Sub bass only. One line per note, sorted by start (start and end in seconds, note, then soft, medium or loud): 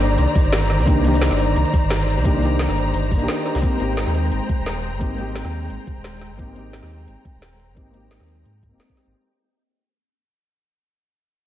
0.00 0.17 G1 medium
0.18 0.26 C2 medium
0.44 0.81 G1 medium
0.79 1.03 C2 medium
1.04 1.29 C2 loud
1.31 1.55 G1 medium
1.56 1.64 C2 medium
1.82 2.19 G1 medium
2.17 2.41 C2 medium
2.42 2.67 C2 loud
2.69 2.93 G1 medium
2.94 3.22 G1 medium
3.20 3.28 A#1 medium
3.55 3.62 C2 loud
3.80 4.05 G#1 medium
4.07 4.31 D#2 medium
4.32 4.40 G#1 medium
4.58 4.94 D#1 medium
4.93 5.17 G#1 medium
5.18 5.43 G#1 medium
5.44 5.68 D#2 medium
5.70 5.78 G#1 medium
5.96 6.32 D#1 medium
6.31 6.55 G#1 medium
6.56 6.81 G#1 medium
6.83 7.06 D#2 medium
7.08 7.16 G#1 medium
7.34 7.70 D#1 medium
7.69 7.93 G#1 medium
7.94 8.19 G#1 medium
8.20 8.44 D#2 medium
8.46 8.74 G#2 medium
8.72 8.79 D#1 medium
9.07 9.14 G#1 loud